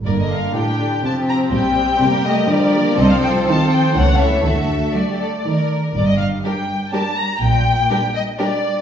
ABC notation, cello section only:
X:1
M:3/4
L:1/8
Q:1/4=123
K:Gm
V:1 name="Cello section" clef=bass
G,,2 A,,2 C,2 | B,,2 C,2 D,2 | C,2 E,2 ^C,2 | D,2 ^F,2 E,2 |
G,,2 z4 | B,,2 z4 |]